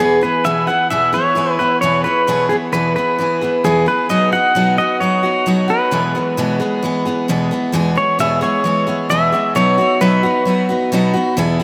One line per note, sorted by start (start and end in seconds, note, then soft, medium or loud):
0.00 0.22 E2 medium
0.00 0.22 B2 medium
0.00 0.23 E3 medium
0.00 0.22 B3 medium
0.00 0.21 E4 medium
0.00 0.23 G#4 medium
0.00 0.20 G#4 medium
0.21 0.44 E3 soft
0.21 0.45 B3 soft
0.21 0.45 E4 soft
0.21 0.45 G#4 soft
0.21 0.46 B4 medium
0.44 0.68 E2 medium
0.44 0.68 B2 medium
0.44 0.68 E3 medium
0.44 0.68 B3 medium
0.44 0.67 E4 medium
0.44 0.66 G#4 medium
0.44 0.67 E5 medium
0.67 0.90 E3 soft
0.67 0.90 B3 soft
0.67 0.91 E4 soft
0.67 0.90 G#4 soft
0.67 0.89 F#5 medium
0.90 1.13 E2 medium
0.90 1.13 B2 medium
0.90 1.14 E3 medium
0.90 1.13 B3 medium
0.90 1.12 E4 medium
0.90 1.11 G#4 medium
0.90 1.14 E5 medium
1.13 1.34 E3 soft
1.13 1.35 B3 soft
1.13 1.36 E4 soft
1.13 1.36 G#4 medium
1.13 1.61 C#5 medium
1.35 1.59 E3 medium
1.35 1.59 B3 medium
1.35 1.59 E4 medium
1.35 1.58 G#4 medium
1.59 1.82 E3 soft
1.59 1.82 B3 soft
1.59 1.82 E4 soft
1.59 1.82 G#4 soft
1.59 1.80 B4 medium
1.81 2.05 E2 medium
1.81 2.05 B2 medium
1.81 2.05 E3 medium
1.81 2.05 B3 medium
1.81 2.04 E4 medium
1.81 2.03 G#4 medium
1.81 2.04 C#5 medium
2.04 2.27 E3 soft
2.04 2.28 B3 soft
2.04 2.28 E4 soft
2.04 2.27 G#4 medium
2.04 2.51 B4 medium
2.27 2.50 E2 medium
2.27 2.51 B2 medium
2.27 2.51 E3 medium
2.27 2.50 B3 medium
2.27 2.49 E4 medium
2.27 2.48 G#4 medium
2.49 2.72 E3 soft
2.49 2.73 B3 soft
2.49 2.73 E4 soft
2.49 2.55 G#4 medium
2.49 2.73 G#4 soft
2.72 2.96 E2 medium
2.72 2.96 B2 medium
2.72 2.96 E3 medium
2.72 2.96 B3 medium
2.72 2.96 E4 medium
2.72 2.95 G#4 medium
2.72 2.95 B4 medium
2.96 3.17 E3 soft
2.96 3.19 B3 soft
2.96 3.19 E4 soft
2.96 3.19 G#4 medium
2.96 3.66 B4 medium
3.19 3.41 E3 medium
3.19 3.42 B3 medium
3.19 3.41 E4 medium
3.19 3.40 G#4 medium
3.41 3.64 E3 soft
3.41 3.64 B3 soft
3.41 3.65 E4 soft
3.41 3.64 G#4 soft
3.64 3.87 E2 medium
3.64 3.87 B2 medium
3.64 3.88 E3 medium
3.64 3.87 B3 medium
3.64 3.86 E4 medium
3.64 3.86 G#4 medium
3.64 3.85 G#4 medium
3.86 4.09 E3 soft
3.86 4.09 B3 soft
3.86 4.10 E4 soft
3.86 4.09 G#4 soft
3.86 4.11 B4 medium
4.09 4.32 B2 medium
4.09 4.33 F#3 medium
4.09 4.33 B3 medium
4.09 4.33 D#4 medium
4.09 4.31 F#4 medium
4.09 4.31 D#5 medium
4.32 4.55 B3 soft
4.32 4.55 D#4 soft
4.32 4.55 F#4 medium
4.32 4.75 F#5 loud
4.55 4.78 B2 medium
4.55 4.78 F#3 medium
4.55 4.79 B3 medium
4.55 4.78 D#4 medium
4.55 4.77 F#4 medium
4.78 5.00 B3 soft
4.78 5.01 D#4 soft
4.78 5.01 F#4 medium
4.78 4.99 D#5 medium
5.00 5.23 F#3 medium
5.00 5.24 B3 medium
5.00 5.23 D#4 medium
5.00 5.22 F#4 medium
5.00 5.71 C#5 medium
5.23 5.46 B3 soft
5.23 5.46 D#4 soft
5.23 5.46 F#4 soft
5.46 5.69 B2 medium
5.46 5.69 F#3 medium
5.46 5.70 B3 medium
5.46 5.68 D#4 medium
5.46 5.67 F#4 medium
5.68 5.92 B3 soft
5.68 5.92 D#4 soft
5.68 5.91 F#4 soft
5.68 7.25 B4 medium
5.91 6.14 E2 medium
5.91 6.15 B2 medium
5.91 6.15 E3 medium
5.91 6.15 G#3 medium
5.91 6.14 B3 medium
5.91 6.14 G#4 medium
6.15 6.37 E3 soft
6.15 6.37 G#3 soft
6.15 6.38 B3 soft
6.15 6.37 G#4 soft
6.37 6.60 E2 medium
6.37 6.60 B2 medium
6.37 6.61 E3 medium
6.37 6.60 G#3 medium
6.37 6.59 B3 medium
6.37 6.58 G#4 medium
6.60 6.81 E3 soft
6.60 6.83 G#3 soft
6.60 6.83 B3 medium
6.60 6.83 G#4 medium
6.83 7.05 E3 medium
6.83 7.06 G#3 medium
6.83 7.05 B3 medium
6.83 7.04 G#4 medium
7.05 7.28 E3 soft
7.05 7.28 G#3 soft
7.05 7.29 B3 medium
7.05 7.28 G#4 medium
7.28 7.51 E2 medium
7.28 7.51 B2 medium
7.28 7.52 E3 medium
7.28 7.52 G#3 medium
7.28 7.51 B3 medium
7.28 7.50 G#4 medium
7.51 7.72 E3 soft
7.51 7.73 G#3 soft
7.51 7.73 B3 medium
7.51 7.74 G#4 medium
7.72 7.96 E2 medium
7.72 7.96 B2 medium
7.72 7.97 E3 medium
7.72 7.96 G#3 medium
7.72 7.96 B3 medium
7.72 7.94 G#4 medium
7.95 8.18 E3 soft
7.95 8.19 G#3 soft
7.95 8.19 B3 soft
7.95 8.19 G#4 soft
7.95 8.19 C#5 medium
8.19 8.42 E2 medium
8.19 8.42 B2 medium
8.19 8.42 E3 medium
8.19 8.42 G#3 medium
8.19 8.41 B3 medium
8.19 8.40 G#4 medium
8.19 8.42 E5 medium
8.41 8.63 E3 soft
8.41 8.64 G#3 soft
8.41 8.65 B3 medium
8.41 8.64 G#4 medium
8.41 9.09 C#5 medium
8.64 8.87 E3 medium
8.64 8.87 G#3 medium
8.64 8.86 B3 medium
8.64 8.86 G#4 medium
8.87 9.10 E3 soft
8.87 9.10 G#3 soft
8.87 9.10 B3 soft
8.87 9.10 G#4 soft
9.09 9.33 E2 medium
9.09 9.33 B2 medium
9.09 9.33 E3 medium
9.09 9.33 G#3 medium
9.09 9.32 B3 medium
9.09 9.31 G#4 medium
9.09 9.54 E5 medium
9.32 9.55 E3 soft
9.32 9.56 G#3 soft
9.32 9.55 B3 soft
9.32 9.55 G#4 soft
9.55 9.78 B2 medium
9.55 9.78 F#3 medium
9.55 9.79 B3 medium
9.55 9.78 D#4 medium
9.55 9.77 F#4 medium
9.55 10.00 C#5 medium
9.78 10.00 B3 soft
9.78 10.01 D#4 soft
9.78 10.01 F#4 medium
10.01 10.24 B2 medium
10.01 10.24 F#3 medium
10.01 10.24 B3 medium
10.01 10.24 D#4 medium
10.01 10.22 F#4 medium
10.01 11.34 B4 medium
10.23 10.45 B3 soft
10.23 10.46 D#4 medium
10.23 10.46 F#4 medium
10.45 10.69 F#3 medium
10.45 10.69 B3 medium
10.45 10.69 D#4 medium
10.45 10.68 F#4 medium
10.69 10.92 B3 soft
10.69 10.92 D#4 soft
10.69 10.92 F#4 medium
10.92 11.15 B2 medium
10.92 11.15 F#3 medium
10.92 11.15 B3 medium
10.92 11.14 D#4 medium
10.92 11.12 F#4 medium
11.14 11.37 B3 soft
11.14 11.38 D#4 medium
11.14 11.37 F#4 medium
11.37 11.60 E2 medium
11.37 11.60 B2 medium
11.37 11.60 E3 medium
11.37 11.61 B3 medium
11.37 11.60 E4 loud
11.37 11.58 G#4 loud
11.60 11.63 G#4 medium